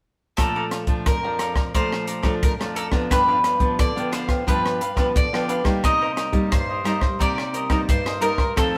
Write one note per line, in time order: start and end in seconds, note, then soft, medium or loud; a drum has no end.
0.37 1.03 A#2 medium
0.37 0.84 F3 medium
0.37 0.84 A3 medium
0.37 0.84 D4 medium
0.37 1.08 A4 medium
0.37 0.54 A4 medium
0.37 0.54 D5 medium
0.37 0.54 F5 medium
0.37 0.55 A#5 medium
0.37 kick medium
0.37 cross-stick medium
0.37 closed hi-hat medium
0.55 0.64 A4 medium
0.55 0.65 D5 medium
0.55 0.65 F5 medium
0.55 0.65 A#5 medium
0.71 1.21 D5 soft
0.71 1.22 F5 medium
0.71 cross-stick medium
0.71 closed hi-hat soft
0.87 1.17 F3 medium
0.87 1.17 A3 medium
0.87 1.17 D4 medium
0.87 kick medium
0.87 closed hi-hat soft
1.06 1.71 F2 medium
1.06 1.75 A#4 medium
1.06 kick medium
1.06 cross-stick medium
1.06 closed hi-hat medium
1.23 1.70 F3 medium
1.23 1.70 D4 medium
1.23 1.38 D5 soft
1.23 1.39 F5 soft
1.23 1.39 A#5 soft
1.39 1.55 A4 medium
1.39 1.55 D5 medium
1.39 1.54 F5 medium
1.39 1.53 A#5 medium
1.39 cross-stick medium
1.39 closed hi-hat soft
1.54 1.73 D5 soft
1.54 1.72 F5 soft
1.54 1.72 A#5 soft
1.54 kick medium
1.54 cross-stick medium
1.74 2.40 A#2 medium
1.74 2.21 F3 medium
1.74 2.21 A3 medium
1.74 2.21 D4 medium
1.74 2.42 C5 medium
1.74 2.06 D5 medium
1.74 2.06 F5 medium
1.74 2.07 A#5 medium
1.74 kick medium
1.74 closed hi-hat medium
1.93 cross-stick medium
2.06 2.21 A4 soft
2.06 2.21 D5 medium
2.06 2.22 F5 medium
2.06 2.22 A#5 medium
2.06 closed hi-hat medium
2.22 2.54 F3 medium
2.22 2.54 A3 medium
2.22 2.54 D4 medium
2.22 2.33 A4 medium
2.22 2.33 D5 medium
2.22 2.33 F5 medium
2.22 2.34 A#5 medium
2.22 kick medium
2.22 cross-stick medium
2.22 closed hi-hat soft
2.43 3.08 F2 medium
2.43 2.52 A#4 medium
2.43 kick medium
2.43 closed hi-hat medium
2.59 2.89 F3 medium
2.59 2.89 A3 medium
2.59 2.89 D4 medium
2.59 2.74 D5 soft
2.59 2.75 F5 soft
2.59 2.75 A#5 soft
2.59 cross-stick medium
2.59 closed hi-hat soft
2.75 2.92 A4 medium
2.75 2.86 A4 medium
2.75 2.92 D5 medium
2.75 2.91 F5 medium
2.75 2.90 A#5 medium
2.75 closed hi-hat soft
2.91 3.56 F3 medium
2.91 3.56 B3 medium
2.91 3.56 D4 medium
2.91 3.09 D5 soft
2.91 3.09 F5 soft
2.91 3.08 A#5 soft
2.91 kick medium
2.91 cross-stick medium
3.10 3.76 G2 medium
3.10 3.26 D4 medium
3.10 3.27 G4 medium
3.10 3.27 B4 medium
3.10 3.76 B4 medium
3.10 3.27 F5 medium
3.10 kick medium
3.10 cross-stick medium
3.10 closed hi-hat medium
3.28 3.37 D4 medium
3.28 3.37 G4 medium
3.28 3.37 B4 medium
3.28 3.38 F5 medium
3.44 3.94 D4 medium
3.44 3.95 G4 soft
3.44 3.95 B4 medium
3.44 3.95 F5 medium
3.44 cross-stick medium
3.44 closed hi-hat soft
3.59 3.90 F3 medium
3.59 3.90 B3 medium
3.59 3.90 D4 medium
3.59 kick medium
3.59 closed hi-hat soft
3.79 4.44 D3 medium
3.79 4.12 D5 medium
3.79 kick medium
3.79 cross-stick medium
3.79 closed hi-hat medium
3.96 4.42 F3 medium
3.96 4.42 B3 medium
3.96 4.42 D4 medium
3.96 4.11 G4 soft
3.96 4.11 B4 soft
3.96 4.12 F5 soft
3.96 closed hi-hat soft
4.12 4.28 D4 medium
4.12 4.28 G4 medium
4.12 4.27 B4 medium
4.12 4.45 C5 medium
4.12 4.26 F5 medium
4.12 cross-stick medium
4.12 closed hi-hat soft
4.28 4.46 G4 soft
4.28 4.45 B4 soft
4.28 4.45 F5 medium
4.28 kick medium
4.28 cross-stick medium
4.28 closed hi-hat soft
4.47 5.12 G2 medium
4.47 4.79 F3 medium
4.47 4.80 B3 medium
4.47 4.79 D4 medium
4.47 4.80 D4 medium
4.47 4.80 G4 medium
4.47 4.81 B4 medium
4.47 5.12 B4 medium
4.47 4.81 F5 medium
4.47 kick medium
4.47 closed hi-hat medium
4.66 cross-stick medium
4.66 closed hi-hat soft
4.80 4.95 D4 medium
4.80 4.96 G4 medium
4.80 4.96 B4 medium
4.80 4.96 F5 medium
4.80 closed hi-hat soft
4.96 5.26 F3 medium
4.96 5.26 B3 medium
4.96 5.07 D4 medium
4.96 5.27 D4 medium
4.96 5.07 G4 medium
4.96 5.07 B4 medium
4.96 5.07 F5 medium
4.96 kick medium
4.96 cross-stick medium
4.96 closed hi-hat soft
5.15 5.80 D3 medium
5.15 5.84 D5 medium
5.15 kick medium
5.15 closed hi-hat medium
5.33 5.62 F3 medium
5.33 5.62 B3 medium
5.33 5.62 D4 medium
5.33 5.47 G4 soft
5.33 5.48 B4 soft
5.33 5.49 F5 soft
5.33 cross-stick medium
5.48 5.65 D4 medium
5.48 5.65 G4 medium
5.48 5.64 B4 medium
5.48 5.63 F5 medium
5.48 closed hi-hat soft
5.64 6.28 G3 medium
5.64 6.29 A#3 medium
5.64 6.29 D#4 medium
5.64 5.82 G4 soft
5.64 5.82 B4 soft
5.64 5.81 F5 soft
5.64 kick medium
5.64 cross-stick medium
5.64 closed hi-hat soft
5.83 6.48 C3 medium
5.83 6.00 D#4 medium
5.83 6.00 A#4 medium
5.83 6.00 C5 medium
5.83 6.52 D#5 loud
5.83 6.00 D#5 medium
5.83 kick medium
5.83 cross-stick medium
5.83 closed hi-hat medium
6.01 6.10 D#4 medium
6.01 6.10 A#4 medium
6.01 6.11 C5 medium
6.01 6.11 D#5 medium
6.16 6.67 D#4 medium
6.16 6.67 A#4 medium
6.16 6.68 C5 soft
6.16 6.68 D#5 medium
6.16 cross-stick medium
6.16 closed hi-hat soft
6.32 6.80 G3 medium
6.32 6.80 A#3 medium
6.32 6.80 D#4 medium
6.32 kick medium
6.32 closed hi-hat soft
6.51 7.17 G2 medium
6.51 7.21 C5 medium
6.51 kick medium
6.51 cross-stick medium
6.51 closed hi-hat medium
6.69 6.84 A#4 soft
6.69 6.84 C5 soft
6.69 6.85 D#5 soft
6.84 7.05 G3 medium
6.84 7.06 A#3 soft
6.84 7.01 D#4 medium
6.84 7.06 D#4 medium
6.84 7.01 A#4 medium
6.84 7.00 C5 medium
6.84 6.99 D#5 medium
6.84 cross-stick medium
6.84 closed hi-hat soft
7.00 7.18 A#4 soft
7.00 7.18 C5 soft
7.00 7.18 D#5 medium
7.00 kick medium
7.00 cross-stick medium
7.19 7.85 C3 medium
7.19 7.66 G3 medium
7.19 7.66 A#3 medium
7.19 7.52 D#4 medium
7.19 7.66 D#4 medium
7.19 7.53 A#4 medium
7.19 7.53 C5 medium
7.19 7.89 D5 loud
7.19 kick medium
7.19 closed hi-hat medium
7.38 cross-stick medium
7.53 7.68 D#4 soft
7.53 7.69 A#4 medium
7.53 7.69 C5 medium
7.53 7.69 D#5 medium
7.53 closed hi-hat soft
7.69 8.16 G3 medium
7.69 8.17 A#3 medium
7.69 7.80 D#4 medium
7.69 8.17 D#4 medium
7.69 7.80 A#4 medium
7.69 7.80 C5 medium
7.69 7.80 D#5 medium
7.69 kick medium
7.69 cross-stick medium
7.69 closed hi-hat soft
7.88 8.53 G2 medium
7.88 8.22 C5 medium
7.88 kick medium
7.88 closed hi-hat medium
8.06 8.20 A#4 soft
8.06 8.21 C5 soft
8.06 8.21 D#5 soft
8.06 cross-stick medium
8.06 closed hi-hat soft
8.21 8.42 G3 medium
8.21 8.42 A#3 medium
8.21 8.38 D#4 medium
8.21 8.42 D#4 medium
8.21 8.37 A#4 medium
8.21 8.54 A#4 medium
8.21 8.36 C5 medium
8.21 8.36 D#5 medium
8.21 closed hi-hat soft
8.37 8.55 A#4 soft
8.37 8.55 C5 soft
8.37 8.54 D#5 soft
8.37 kick medium
8.37 cross-stick medium
8.56 8.78 F2 medium
8.56 8.78 D#3 medium
8.56 8.78 A3 medium
8.56 8.78 C4 medium
8.56 8.72 D#4 medium
8.56 8.73 A4 medium
8.56 8.78 A4 medium
8.56 8.73 C5 medium
8.56 8.73 F5 medium
8.56 kick medium
8.56 cross-stick medium
8.56 closed hi-hat medium